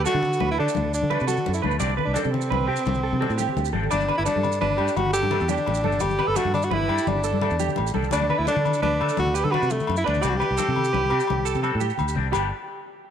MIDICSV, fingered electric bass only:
0, 0, Header, 1, 2, 480
1, 0, Start_track
1, 0, Key_signature, 1, "major"
1, 0, Tempo, 351083
1, 2462, Time_signature, 12, 3, 24, 8
1, 17916, End_track
2, 0, Start_track
2, 0, Title_t, "Fingered electric bass"
2, 0, Program_c, 0, 33
2, 197, Note_on_c, 0, 50, 95
2, 532, Note_off_c, 0, 50, 0
2, 557, Note_on_c, 0, 38, 107
2, 779, Note_off_c, 0, 38, 0
2, 816, Note_on_c, 0, 50, 88
2, 915, Note_off_c, 0, 50, 0
2, 1052, Note_on_c, 0, 38, 103
2, 1380, Note_off_c, 0, 38, 0
2, 1410, Note_on_c, 0, 50, 96
2, 1624, Note_off_c, 0, 50, 0
2, 1657, Note_on_c, 0, 48, 93
2, 1868, Note_off_c, 0, 48, 0
2, 2022, Note_on_c, 0, 42, 86
2, 2230, Note_off_c, 0, 42, 0
2, 2252, Note_on_c, 0, 38, 99
2, 2465, Note_off_c, 0, 38, 0
2, 2471, Note_on_c, 0, 36, 102
2, 2694, Note_off_c, 0, 36, 0
2, 2831, Note_on_c, 0, 36, 92
2, 2940, Note_off_c, 0, 36, 0
2, 3076, Note_on_c, 0, 48, 86
2, 3410, Note_off_c, 0, 48, 0
2, 3433, Note_on_c, 0, 36, 110
2, 3654, Note_off_c, 0, 36, 0
2, 3675, Note_on_c, 0, 48, 88
2, 3782, Note_off_c, 0, 48, 0
2, 3914, Note_on_c, 0, 36, 106
2, 4248, Note_off_c, 0, 36, 0
2, 4276, Note_on_c, 0, 48, 97
2, 4496, Note_off_c, 0, 48, 0
2, 4508, Note_on_c, 0, 45, 88
2, 4731, Note_off_c, 0, 45, 0
2, 4873, Note_on_c, 0, 38, 92
2, 5094, Note_off_c, 0, 38, 0
2, 5102, Note_on_c, 0, 32, 94
2, 5328, Note_off_c, 0, 32, 0
2, 5364, Note_on_c, 0, 31, 102
2, 5580, Note_off_c, 0, 31, 0
2, 5727, Note_on_c, 0, 31, 96
2, 5827, Note_off_c, 0, 31, 0
2, 5958, Note_on_c, 0, 43, 88
2, 6290, Note_off_c, 0, 43, 0
2, 6322, Note_on_c, 0, 31, 103
2, 6539, Note_off_c, 0, 31, 0
2, 6562, Note_on_c, 0, 43, 89
2, 6665, Note_off_c, 0, 43, 0
2, 6789, Note_on_c, 0, 31, 109
2, 7126, Note_off_c, 0, 31, 0
2, 7149, Note_on_c, 0, 43, 96
2, 7372, Note_off_c, 0, 43, 0
2, 7395, Note_on_c, 0, 40, 91
2, 7615, Note_off_c, 0, 40, 0
2, 7757, Note_on_c, 0, 33, 90
2, 7976, Note_off_c, 0, 33, 0
2, 7991, Note_on_c, 0, 31, 97
2, 8214, Note_off_c, 0, 31, 0
2, 8235, Note_on_c, 0, 31, 102
2, 8456, Note_off_c, 0, 31, 0
2, 8582, Note_on_c, 0, 31, 92
2, 8696, Note_off_c, 0, 31, 0
2, 8819, Note_on_c, 0, 43, 87
2, 9161, Note_off_c, 0, 43, 0
2, 9177, Note_on_c, 0, 31, 107
2, 9407, Note_off_c, 0, 31, 0
2, 9428, Note_on_c, 0, 43, 86
2, 9539, Note_off_c, 0, 43, 0
2, 9663, Note_on_c, 0, 31, 101
2, 10004, Note_off_c, 0, 31, 0
2, 10016, Note_on_c, 0, 43, 97
2, 10247, Note_off_c, 0, 43, 0
2, 10262, Note_on_c, 0, 40, 93
2, 10490, Note_off_c, 0, 40, 0
2, 10644, Note_on_c, 0, 33, 91
2, 10862, Note_off_c, 0, 33, 0
2, 10874, Note_on_c, 0, 36, 98
2, 11097, Note_off_c, 0, 36, 0
2, 11116, Note_on_c, 0, 38, 103
2, 11338, Note_off_c, 0, 38, 0
2, 11471, Note_on_c, 0, 38, 96
2, 11582, Note_off_c, 0, 38, 0
2, 11708, Note_on_c, 0, 50, 90
2, 12048, Note_off_c, 0, 50, 0
2, 12065, Note_on_c, 0, 38, 105
2, 12293, Note_off_c, 0, 38, 0
2, 12327, Note_on_c, 0, 50, 85
2, 12431, Note_off_c, 0, 50, 0
2, 12560, Note_on_c, 0, 38, 108
2, 12895, Note_off_c, 0, 38, 0
2, 12923, Note_on_c, 0, 50, 98
2, 13143, Note_off_c, 0, 50, 0
2, 13157, Note_on_c, 0, 48, 92
2, 13380, Note_off_c, 0, 48, 0
2, 13522, Note_on_c, 0, 42, 87
2, 13742, Note_off_c, 0, 42, 0
2, 13774, Note_on_c, 0, 38, 101
2, 13989, Note_off_c, 0, 38, 0
2, 14004, Note_on_c, 0, 36, 106
2, 14224, Note_off_c, 0, 36, 0
2, 14362, Note_on_c, 0, 36, 97
2, 14469, Note_off_c, 0, 36, 0
2, 14606, Note_on_c, 0, 48, 88
2, 14938, Note_off_c, 0, 48, 0
2, 14957, Note_on_c, 0, 36, 108
2, 15180, Note_off_c, 0, 36, 0
2, 15197, Note_on_c, 0, 48, 88
2, 15307, Note_off_c, 0, 48, 0
2, 15453, Note_on_c, 0, 36, 97
2, 15782, Note_off_c, 0, 36, 0
2, 15795, Note_on_c, 0, 48, 90
2, 16019, Note_off_c, 0, 48, 0
2, 16063, Note_on_c, 0, 45, 90
2, 16274, Note_off_c, 0, 45, 0
2, 16406, Note_on_c, 0, 38, 91
2, 16625, Note_off_c, 0, 38, 0
2, 16640, Note_on_c, 0, 36, 99
2, 16862, Note_off_c, 0, 36, 0
2, 16885, Note_on_c, 0, 31, 96
2, 17100, Note_off_c, 0, 31, 0
2, 17916, End_track
0, 0, End_of_file